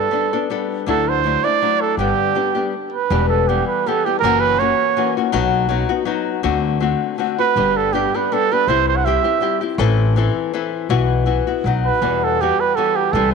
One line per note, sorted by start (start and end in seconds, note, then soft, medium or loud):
0.00 0.10 B3 medium
0.00 0.12 D4 medium
0.00 0.12 A4 medium
0.00 0.51 A4 medium
0.11 0.32 G3 medium
0.11 0.32 B3 soft
0.11 0.32 D4 soft
0.11 0.32 A4 medium
0.33 0.49 B3 soft
0.33 0.49 D4 soft
0.33 0.50 A4 medium
0.50 0.87 G3 medium
0.50 0.87 B3 medium
0.50 0.87 D4 medium
0.50 0.87 A4 medium
0.86 1.35 D2 medium
0.86 1.23 D3 medium
0.86 1.22 F#3 medium
0.86 1.24 A3 medium
0.86 1.24 D4 medium
0.86 1.24 E4 medium
0.86 1.10 A4 medium
1.09 1.46 C5 medium
1.24 1.43 F#3 medium
1.24 1.44 A3 soft
1.24 1.43 D4 medium
1.24 1.43 E4 medium
1.44 1.61 A3 soft
1.44 1.61 D4 soft
1.44 1.61 E4 soft
1.44 1.82 D5 medium
1.62 1.98 F#3 medium
1.62 1.99 A3 medium
1.62 1.99 D4 medium
1.62 1.99 E4 soft
1.81 1.98 A4 medium
1.97 2.10 G1 medium
1.97 2.36 G2 medium
1.97 2.36 D3 medium
1.97 2.34 G3 medium
1.97 2.34 B3 medium
1.97 2.35 D4 medium
1.97 2.69 G4 medium
1.97 2.35 G4 medium
2.35 2.55 G3 soft
2.35 2.55 B3 medium
2.35 2.55 D4 soft
2.35 2.54 G4 medium
2.55 2.74 G3 soft
2.55 2.74 B3 soft
2.55 2.73 D4 soft
2.55 2.73 G4 soft
2.92 3.27 B4 medium
3.10 3.59 E1 loud
3.10 3.48 E2 medium
3.10 3.48 B2 medium
3.10 3.48 E3 medium
3.10 3.48 G3 medium
3.10 3.48 B3 medium
3.10 3.48 G4 medium
3.29 3.50 A4 medium
3.48 3.85 E3 medium
3.48 3.86 G3 medium
3.48 3.86 B3 medium
3.48 3.66 G4 medium
3.48 3.86 G4 medium
3.67 3.89 B4 medium
3.86 4.06 E3 medium
3.86 4.06 G3 medium
3.86 4.05 B3 medium
3.86 4.05 G4 medium
3.86 4.07 A4 medium
4.05 4.23 E3 soft
4.05 4.23 G3 soft
4.05 4.23 B3 soft
4.05 4.19 G4 medium
4.05 4.23 G4 soft
4.19 4.71 F#1 medium
4.19 4.60 F#2 medium
4.19 4.60 C#3 medium
4.19 4.42 A#4 loud
4.24 4.58 E3 medium
4.24 4.59 A#3 medium
4.24 4.59 C#4 medium
4.24 4.62 F#4 medium
4.40 4.61 B4 medium
4.59 4.95 E3 soft
4.59 4.95 A#3 medium
4.59 4.97 C#4 medium
4.59 4.97 F#4 medium
4.59 5.16 C#5 medium
4.97 5.16 E3 medium
4.97 5.16 A#3 medium
4.97 5.17 C#4 medium
4.97 5.16 F#4 medium
5.17 5.32 E3 soft
5.17 5.33 A#3 soft
5.17 5.33 C#4 soft
5.17 5.33 F#4 soft
5.32 5.81 B1 loud
5.32 5.70 B2 medium
5.32 5.67 F#3 medium
5.32 5.69 B3 medium
5.32 5.69 D#4 medium
5.32 5.69 F#4 medium
5.69 5.89 F#3 medium
5.69 5.89 B3 medium
5.69 5.88 D#4 medium
5.69 5.88 F#4 medium
5.89 6.04 B3 soft
5.89 6.06 D#4 soft
5.89 6.05 F#4 medium
6.05 6.43 F#3 medium
6.05 6.43 B3 medium
6.05 6.43 D#4 medium
6.05 6.43 F#4 medium
6.43 6.92 D2 medium
6.43 6.79 D3 medium
6.43 6.79 A3 medium
6.43 6.80 C4 medium
6.43 6.81 F#4 medium
6.80 7.17 D3 medium
6.80 7.17 A3 medium
6.80 7.18 C4 medium
6.80 7.18 F#4 medium
7.18 7.38 D3 medium
7.18 7.38 A3 medium
7.18 7.38 C4 medium
7.18 7.38 F#4 medium
7.39 7.57 A3 soft
7.39 7.57 C4 soft
7.39 7.56 F#4 soft
7.39 7.78 B4 medium
7.56 8.05 G1 medium
7.56 7.94 G2 medium
7.56 7.94 D3 medium
7.56 7.92 G3 medium
7.56 7.92 B3 medium
7.56 7.93 D4 medium
7.56 7.94 G4 medium
7.77 7.94 A4 medium
7.93 8.13 G3 medium
7.93 8.13 B3 medium
7.93 8.14 D4 medium
7.93 8.17 G4 medium
7.93 8.13 G4 medium
8.14 8.31 G3 soft
8.14 8.31 B3 soft
8.14 8.31 D4 soft
8.14 8.31 G4 soft
8.14 8.35 B4 medium
8.32 8.51 G3 medium
8.32 8.51 B3 medium
8.32 8.51 D4 medium
8.32 8.50 G4 medium
8.32 8.54 A4 medium
8.51 8.67 G3 soft
8.51 8.69 B3 soft
8.51 8.69 D4 soft
8.51 8.68 G4 medium
8.51 8.70 B4 medium
8.67 9.16 C2 medium
8.67 9.05 C3 medium
8.67 9.04 G3 medium
8.67 9.05 C4 medium
8.67 9.07 E4 medium
8.67 9.06 G4 medium
8.67 8.88 C5 loud
8.88 8.98 C5 medium
8.96 9.07 F#5 medium
9.05 9.25 G3 soft
9.05 9.24 C4 medium
9.05 9.24 E4 medium
9.05 9.23 G4 medium
9.05 9.62 E5 medium
9.24 9.40 C4 soft
9.24 9.41 E4 soft
9.24 9.41 G4 soft
9.41 9.61 G3 medium
9.41 9.61 C4 medium
9.41 9.61 E4 medium
9.41 9.60 G4 medium
9.61 9.78 C4 soft
9.61 9.79 E4 soft
9.61 9.79 G4 soft
9.78 10.26 A1 loud
9.78 10.16 A2 medium
9.78 10.15 E3 medium
9.78 10.16 C4 loud
9.78 10.16 E4 loud
9.78 10.16 A4 loud
10.16 10.53 E3 medium
10.16 10.52 C4 medium
10.16 10.53 E4 medium
10.16 10.54 A4 medium
10.53 10.89 E3 medium
10.53 10.90 C4 medium
10.53 10.89 E4 medium
10.53 10.90 A4 medium
10.89 11.38 B1 medium
10.89 11.27 B2 medium
10.89 11.24 E3 medium
10.89 11.25 B3 medium
10.89 11.25 E4 loud
10.89 11.26 F#4 medium
11.26 11.46 E3 medium
11.26 11.46 B3 medium
11.26 11.46 E4 medium
11.26 11.46 F#4 medium
11.47 11.65 B3 soft
11.47 11.64 E4 soft
11.47 11.64 F#4 soft
11.64 11.88 B1 medium
11.64 12.01 F#3 medium
11.64 12.01 B3 medium
11.64 12.02 D#4 medium
11.64 12.01 F#4 medium
11.86 12.25 B4 medium
12.01 12.50 E2 medium
12.01 12.39 E2 medium
12.01 12.39 B2 medium
12.01 12.40 E3 medium
12.01 12.41 G3 medium
12.01 12.39 B3 medium
12.01 12.39 F#4 medium
12.24 12.43 A4 medium
12.41 12.77 E3 medium
12.41 12.78 G3 soft
12.41 12.76 B3 medium
12.41 12.77 F#4 medium
12.41 12.62 G4 medium
12.60 12.77 B4 medium
12.76 13.14 E3 medium
12.76 13.15 G3 medium
12.76 13.14 B3 medium
12.76 13.14 F#4 medium
12.76 12.97 A4 medium
12.96 13.14 G4 medium
13.12 13.34 C2 loud
13.12 13.34 C3 medium
13.12 13.34 E3 medium
13.12 13.34 G3 medium
13.12 13.34 C4 medium
13.12 13.34 E4 medium
13.12 13.32 A4 medium